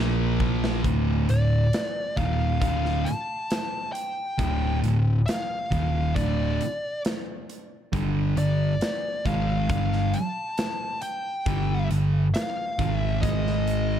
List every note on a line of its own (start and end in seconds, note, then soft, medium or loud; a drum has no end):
0.00 0.80 A#1 loud
0.00 0.83 A#2 medium
0.00 0.84 F3 medium
0.00 0.84 A#3 medium
0.40 kick medium
0.64 snare loud
0.84 1.26 D1 medium
0.84 1.27 D2 loud
0.84 1.28 A2 loud
0.84 1.28 D3 loud
0.84 kick medium
0.84 closed hi-hat medium
1.29 1.70 D1 medium
1.29 1.64 D2 medium
1.29 1.64 A2 medium
1.29 2.17 D5 medium
1.29 closed hi-hat medium
1.73 snare loud
1.73 closed hi-hat medium
2.17 2.59 D#1 medium
2.17 2.60 D#2 medium
2.17 2.60 A#2 medium
2.17 2.61 D#3 loud
2.17 2.59 F5 medium
2.17 kick medium
2.17 closed hi-hat medium
2.61 3.03 D1 loud
2.61 3.05 D2 medium
2.61 3.05 A2 loud
2.61 3.05 D3 loud
2.61 3.07 F5 loud
2.61 kick loud
2.61 closed hi-hat loud
2.85 snare soft
3.05 3.90 A5 loud
3.05 closed hi-hat medium
3.50 snare loud
3.50 closed hi-hat loud
3.93 4.78 G5 medium
3.93 closed hi-hat medium
4.38 4.80 D1 medium
4.38 4.82 D2 medium
4.38 4.82 A2 loud
4.38 4.82 D3 loud
4.38 kick loud
4.38 closed hi-hat medium
4.83 5.25 D1 medium
4.83 5.19 D2 medium
4.83 5.19 A2 medium
4.83 closed hi-hat medium
5.26 6.15 F5 loud
5.26 snare loud
5.26 closed hi-hat loud
5.71 6.13 D#1 medium
5.71 6.14 D#2 medium
5.71 6.15 A#2 medium
5.71 6.15 D#3 loud
5.71 kick loud
5.71 closed hi-hat medium
6.15 6.57 D1 loud
6.15 6.58 D2 loud
6.15 6.59 A2 medium
6.15 6.59 D3 loud
6.15 7.00 D5 medium
6.15 kick loud
6.15 closed hi-hat loud
6.61 closed hi-hat medium
7.05 snare loud
7.05 closed hi-hat medium
7.49 closed hi-hat medium
7.93 8.34 G1 medium
7.93 8.36 G2 medium
7.93 8.36 D3 medium
7.93 8.36 G3 loud
7.93 kick loud
7.93 closed hi-hat medium
8.37 8.78 G1 medium
8.37 8.73 G2 medium
8.37 8.73 D3 medium
8.37 9.26 D5 medium
8.37 closed hi-hat medium
8.81 snare loud
8.81 closed hi-hat medium
9.26 9.67 G#1 medium
9.26 9.68 G#2 medium
9.26 9.69 D#3 medium
9.26 9.69 G#3 loud
9.26 9.69 F5 loud
9.26 kick loud
9.26 closed hi-hat medium
9.69 10.11 G1 loud
9.69 10.13 G2 loud
9.69 10.13 D3 medium
9.69 10.13 G3 loud
9.69 10.15 F5 loud
9.69 kick loud
9.69 closed hi-hat medium
9.93 snare soft
10.14 11.02 A5 loud
10.14 closed hi-hat medium
10.58 snare loud
10.58 closed hi-hat medium
11.02 11.87 G5 medium
11.02 closed hi-hat medium
11.46 11.88 G1 loud
11.46 11.89 G2 medium
11.46 11.90 D3 medium
11.46 11.90 G3 loud
11.46 kick loud
11.46 closed hi-hat medium
11.91 12.32 G1 medium
11.91 12.26 G2 medium
11.91 12.26 D3 medium
11.91 closed hi-hat medium
12.34 12.96 F5 loud
12.34 snare loud
12.34 closed hi-hat loud
12.78 13.21 G#1 medium
12.78 13.21 G#2 medium
12.78 13.22 D#3 medium
12.78 13.22 G#3 loud
12.78 kick loud
12.78 closed hi-hat medium
12.96 13.21 E5 loud
13.21 14.00 G#1 loud
13.21 14.00 G#2 loud
13.21 14.00 D#3 loud
13.21 14.00 G#3 loud
13.21 14.00 D#5 loud
13.21 kick loud
13.21 closed hi-hat loud
13.47 snare soft
13.67 closed hi-hat medium